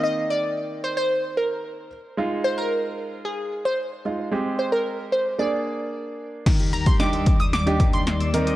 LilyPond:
<<
  \new Staff \with { instrumentName = "Synth pluck" } { \time 4/4 \key ees \major \tempo 4 = 112 ees''8 d''4 c''16 c''8. bes'4 r8 | r8 c''16 bes'4~ bes'16 aes'8. c''8. r8 | r8 c''16 bes'8. c''8 d''4. r8 | r8 bes''16 c'''16 d'''8. ees'''16 d'''8. c'''16 c'''8. r16 | }
  \new Staff \with { instrumentName = "Qanun" } { \time 4/4 \key ees \major r1 | r1 | r1 | ees16 g'16 ees16 g'16 d'''16 fes'''16 r16 fes'''16 r16 g'16 ees16 r16 d'''16 fes'''16 r16 ees''16 | }
  \new Staff \with { instrumentName = "Grand piano" } { \time 4/4 \key ees \major <ees bes c' ees'>2.~ <ees bes c' ees'>8 r8 | <aes ees' f'>2.~ <aes ees' f'>8 <aes ees' f'>8 | <aes c' g'>2 <bes d' aes'>2 | r4 <d' ees' g'>8. r8 <d' ees' g'>8. r8 <ees c' ees' bes'>8 | }
  \new Staff \with { instrumentName = "Analog synth pad" } { \clef bass \time 4/4 \key ees \major << { r1 | r1 | r1 | <ees, ees d''>1 | } \\ { r1 | r1 | r1 | g2.~ g8 bes8 | } >> }
  \new DrumStaff \with { instrumentName = "Drums" } \drummode { \time 4/4 r4 r4 r4 r4 | r4 r4 r4 r4 | r4 r4 r4 r4 | <cymc hh bd sn>16 hh16 hh16 <hh bd>16 <hh sn>16 hh16 <hh bd>16 hh16 <hh sn>16 hh16 <hh bd>16 hh16 <hh sn>16 hh16 hh16 hh16 | }
>>